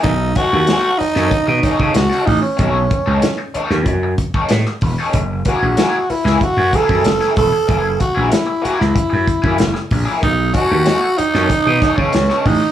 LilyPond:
<<
  \new Staff \with { instrumentName = "Tenor saxophone" } { \time 4/4 \key b \major \tempo 4 = 94 dis'8 fis'4 dis'4 dis'8 fis'8 dis'16 cis'16~ | cis'4.~ cis'16 r2 r16 | r8 fis'4 e'8 fis'8 a'4 a'8~ | a'8 fis'8 e'8 fis'16 e'4.~ e'16 r8 |
dis'8 fis'4 dis'4~ dis'16 cis'8. dis'8 | }
  \new Staff \with { instrumentName = "Overdriven electric guitar" } { \time 4/4 \key b \major r8 <cis' dis' a'>16 r16 <cis' dis' a'>16 r8 <cis' dis' a'>16 r8 <cis' dis' a'>16 <cis' dis' a'>16 r16 <cis' dis' a'>16 r8 | <cis' dis' a'>16 r8 <cis' dis' a'>16 r8 <cis' dis' a'>16 r4 <cis' dis' a'>16 r8. <cis' dis' a'>16 | r8 <ais e' gis'>16 r16 <ais e' gis'>16 r8 <ais e' gis'>16 r8 <ais e' gis'>16 <ais e' gis'>16 r16 <ais e' gis'>16 r8 | <ais e' gis'>16 r8 <ais e' gis'>16 r8 <ais e' gis'>16 r4 <ais e' gis'>16 r8. <ais e' gis'>16 |
r8 <cis' dis' a'>16 r16 <cis' dis' a'>16 r8 <cis' dis' a'>16 r8 <cis' dis' a'>16 <cis' dis' a'>16 r16 <cis' dis' a'>16 r8 | }
  \new Staff \with { instrumentName = "Slap bass" } { \clef bass \time 4/4 \key b \major b,,8 r16 dis,16 r8. fis,16 r16 b,16 r16 cis16 cis,16 r16 a,,16 r16 | b,,8 r16 cis,16 r8. dis,16 fis,8 r8 a,16 r16 e,,16 r16 | fis,,8 r16 ais,,16 r8. cis,16 r16 fis,16 r16 fis,16 fis,,16 r16 e,,16 r16 | fis,,8 r16 ais,,16 r8. cis,16 r16 fis,16 r16 fis,16 fis,,16 r16 ais,,16 r16 |
b,,8 r16 dis,16 r8. fis,16 r16 b,16 r16 cis16 cis,16 r16 a,,16 r16 | }
  \new DrumStaff \with { instrumentName = "Drums" } \drummode { \time 4/4 <hh bd>8 <hh bd>8 <hh sn>8 hho16 sn16 <hh bd>8 <hh bd>16 bd16 <hh sn>16 sn16 <hho bd>8 | <hh bd>8 <hh bd>8 <hh sn>8 hh16 sn16 <hh bd>8 <hh bd>16 bd16 <hh sn>16 sn16 <hho bd>8 | <hh bd>8 <hh bd>8 <hh sn>8 hho16 sn16 <hh bd>8 <hh bd>16 bd16 <hh sn>16 sn16 <hho bd>8 | <hh bd>8 <hh bd>8 <hh sn>8 hh16 sn16 <hh bd>8 <hh bd>16 bd16 <hh sn>16 sn16 <hho bd>8 |
<hh bd>8 <hh bd>8 <hh sn>8 hh16 sn16 <hh bd>8 <hh bd sn>16 bd16 <hh sn>16 sn16 <hho bd>8 | }
>>